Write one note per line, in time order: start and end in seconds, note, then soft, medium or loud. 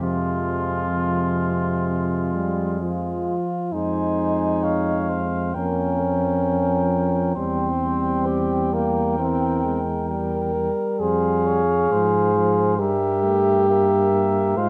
0.00 3.41 F2 soft
0.00 0.84 C3 soft
0.00 2.77 F3 soft
0.00 3.37 G#3 soft
0.00 2.77 F4 soft
0.95 2.30 C3 soft
2.35 2.82 G3 soft
2.80 3.73 F3 soft
2.80 3.74 F4 soft
3.72 5.51 F2 soft
3.72 5.51 G#3 soft
3.72 5.38 D#4 medium
3.72 4.65 C5 soft
3.72 4.65 G#5 soft
4.64 5.11 C#5 soft
4.64 5.55 F5 soft
5.09 5.57 C5 soft
5.54 7.32 F2 soft
5.54 6.02 A#3 soft
5.54 7.32 C#4 medium
5.54 7.35 A#4 soft
5.54 7.35 G5 soft
6.01 7.36 F3 soft
7.36 10.69 E2 soft
7.36 7.68 G3 soft
7.36 8.70 C4 medium
7.36 8.28 C5 soft
7.36 10.06 G5 soft
7.82 9.20 G3 soft
8.26 8.75 G4 soft
8.74 9.18 A#3 soft
8.74 10.73 A#4 soft
9.18 9.63 E3 soft
9.18 9.81 C4 medium
9.64 10.11 G#3 soft
10.10 10.54 G3 soft
10.10 11.01 A#4 medium
10.10 10.71 G5 soft
10.55 11.60 G3 soft
11.00 11.86 F2 soft
11.00 12.78 G#4 medium
11.00 11.48 C5 soft
11.00 12.76 F5 soft
11.46 11.93 C#5 soft
11.89 12.81 G#2 soft
11.89 12.31 F3 soft
11.89 12.81 C5 soft
12.34 12.78 F3 soft
12.79 14.57 G2 soft
12.79 13.25 G3 soft
12.79 14.54 G4 medium
12.79 13.68 A#4 soft
12.79 13.67 E5 soft
13.23 13.69 A3 soft
13.68 14.12 A#3 soft
13.68 14.59 A#4 soft
13.68 14.60 E5 soft
14.13 14.59 A#3 soft
14.57 14.69 G#2 soft
14.57 14.69 G#3 soft
14.57 14.69 F4 medium
14.57 14.69 C5 soft
14.57 14.69 F5 soft